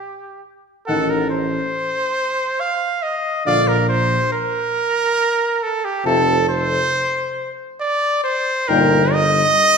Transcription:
Already playing: trumpet G4
0.87 tuba A1, euphonium D#3, french horn D#4, trumpet A4, cornet F#5
1.10 trumpet A#4
1.30 trumpet C5
2.60 trumpet F5
3.03 trumpet D#5
3.45 tuba A#1, euphonium D3, french horn F4, trumpet D5, cornet F5
3.68 trumpet A#4
3.89 trumpet C5
4.33 trumpet A#4
5.63 trumpet A4
5.85 trumpet G4
6.05 tuba F1, euphonium C3, french horn F4, trumpet A4, cornet A5
6.49 trumpet C5
7.81 trumpet D5
8.24 trumpet C5
8.68 tuba G1, euphonium A#2, french horn D#4, trumpet A#4, cornet G5
9.13 trumpet D#5

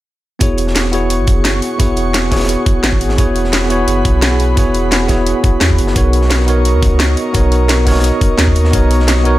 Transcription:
0.39 sub bass E1, tine electric piano B3 E4 F#4 G#4 C#5, analog synth pad G#4 F#5 C#6, kick, closed hi-hat
0.58 closed hi-hat
0.67 snare
0.75 snare, closed hi-hat
0.85 snare
0.91 tine electric piano B3 E4 F#4 G#4 C#5, closed hi-hat
1.10 closed hi-hat
1.19 sub bass G#1
1.27 sub bass F#1, kick, closed hi-hat
1.44 snare, closed hi-hat
1.62 closed hi-hat
1.78 sub bass E1, tine electric piano B3 E4 F#4 G#4 C#5, kick, closed hi-hat
1.97 closed hi-hat
2.14 snare, closed hi-hat
2.30 tine electric piano B3 E4 F#4 G#4 C#5, kick, snare, closed hi-hat
2.36 snare, closed hi-hat
2.40 snare, closed hi-hat
2.44 snare, closed hi-hat
2.49 closed hi-hat
2.66 kick, closed hi-hat
2.83 sub bass G#1, snare, closed hi-hat
2.93 kick
3.01 closed hi-hat
3.09 snare
3.17 sub bass E1, tine electric piano B3 E4 F#4 G#4 C#5, analog synth pad B5, kick, closed hi-hat
3.36 closed hi-hat
3.44 snare
3.53 snare, closed hi-hat
3.62 snare
3.69 tine electric piano B3 E4 F#4 G#4 C#5, closed hi-hat
3.88 sub bass F#1, closed hi-hat
4.05 sub bass B1, kick, closed hi-hat
4.22 snare, closed hi-hat
4.40 closed hi-hat
4.55 sub bass E1, tine electric piano B3 E4 F#4 G#4 C#5, kick, closed hi-hat
4.74 closed hi-hat
4.91 snare, closed hi-hat
5.07 tine electric piano B3 E4 F#4 G#4 C#5, kick, snare, closed hi-hat
5.27 closed hi-hat
5.44 kick, closed hi-hat
5.60 sub bass E2, snare, closed hi-hat
5.70 kick
5.78 sub bass F#1, closed hi-hat
5.87 snare
5.94 sub bass B1, tine electric piano B3 D#4 F#4 A#4 C#5, analog synth pad A#4 D#5 C#6, kick, closed hi-hat
6.13 closed hi-hat
6.22 snare
6.30 snare, closed hi-hat
6.40 snare
6.46 tine electric piano B3 D#4 F#4 A#4 C#5, closed hi-hat
6.65 closed hi-hat
6.74 sub bass D#2
6.83 sub bass C#2, kick, closed hi-hat
6.99 snare, closed hi-hat
7.17 closed hi-hat
7.33 sub bass B1, tine electric piano B3 D#4 F#4 A#4 C#5, kick, closed hi-hat
7.52 closed hi-hat
7.69 snare, closed hi-hat
7.85 tine electric piano B3 D#4 F#4 A#4 C#5, kick, snare, closed hi-hat
7.91 snare, closed hi-hat
7.95 snare, closed hi-hat
7.99 snare, closed hi-hat
8.04 closed hi-hat
8.21 kick, closed hi-hat
8.38 sub bass D#2, snare, closed hi-hat
8.48 kick
8.55 closed hi-hat
8.65 snare
8.71 sub bass B1, tine electric piano B3 D#4 F#4 A#4 C#5, kick, closed hi-hat
8.91 closed hi-hat
9.00 snare
9.08 snare, closed hi-hat
9.17 snare
9.24 tine electric piano B3 D#4 F#4 A#4 C#5, closed hi-hat

